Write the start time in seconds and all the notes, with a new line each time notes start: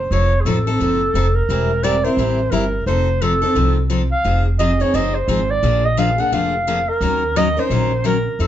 Already playing: C5
0.11 F1 F3 C4 D#4 A4 C#5
0.41 G#4
0.45 A1 F3 C4 D#4 A4
0.67 C4 D#4 A4
0.80 F#1 F3 C4 D#4 A4
1.14 F1 F3 C4 D#4 A4
1.35 A#4
1.49 E1 E3 G3 C4 E4 A#4
1.83 E3 G3 C4 E4 A#4 D5
2.04 C4 E4 A#4 C5
2.17 A1 E3 G3 C4 E4 A#4
2.51 G1 E3 G3 C4 E4 A#4
2.86 F1 F3 C4 D#4 A4 C5
3.22 F3 C4 D#4 A4
3.42 C4 D#4 A4
3.55 C2 F3 C4 D#4 A4
3.90 F3 C4 D#4 A4
4.12 F5
4.24 F1 F3 C4 D#4 G#4
4.59 F3 C4 D#4 G#4 D#5
4.80 C4 D#4 G#4 C#5
4.94 F#1 F3 C4 D#4 G#4 D#5
5.15 C5
5.28 G#1 F3 C4 D#4 G#4
5.51 D5
5.63 A#1 D3 F3 A#3 D4 G#4
5.85 D#5
5.97 D3 F3 A#3 D4 G#4 F5
6.18 A#3 D4 G#4 F#5
6.32 F1 D3 F3 A#3 D4 G#4 F5
6.67 D3 F3 A#3 D4 G#4
6.89 A#4
7.01 D#2 D#3 F#3 C#4 D#4 A#4
7.36 D#3 F#3 C#4 D#4 A#4 D#5
7.57 C#4 D#4 A#4 C5
7.70 A#1 D#3 F#3 C#4 D#4 A#4
8.04 D#3 F#3 C#4 D#4 A#4
8.39 F2 F3 C4 D#4 A4